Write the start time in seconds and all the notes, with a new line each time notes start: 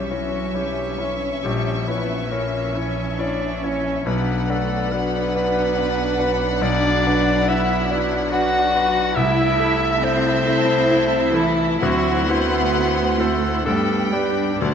Already playing: B1 E3 G3 C#4 E4 C#5 E5 C#6
0.11 F#3 C#4 E4 F#4 C#5
0.54 G3 C#4 E4 G4 C#5
0.98 C#4 E4 C#5
1.44 A#1 G3 G4
1.88 B3 C#4 E4 B4 C#5
2.31 A#3 C#4 E4 A#4 C#5
2.75 C#4 E4 C#5
3.17 C#4 D4 E4 C#5 D5
3.62 C#4 E4 C#5
4.06 B1 F#3 B3 D4 B4 F#5 B5
4.49 A3 D4 F#4 A4 B4
4.91 B3 D4 F#4 B4
5.35 D4 F#4 B4
5.77 D4 F#4 B4
6.19 D4 F#4 B4
6.61 B1 D4 D5
7.07 D4 F#4 B4
7.48 D4 E4 F#4 B4 E5
7.91 D4 F#4 B4
8.32 D4 F#4 B4 F#5
8.74 D4 F#4 B4
9.15 C2 A3 E4 E5 A5
9.59 E4 A4
10.02 C4 E4 A4 C5
10.47 E4 A4
10.90 E4 A4
11.34 E3 E4 A4
11.80 D2 F#3 C4 F#4 F#5 C6
12.27 B3 E4 F#4 B4 C5
12.74 E4 F#4 C5
13.19 A3 E4 F#4 A4 C5
13.65 G2 A3 B3 D4 G4 A4 G5 B5
14.12 G3 D4 G4 B4
14.61 D2 A3 F#4 A4 F#5 A5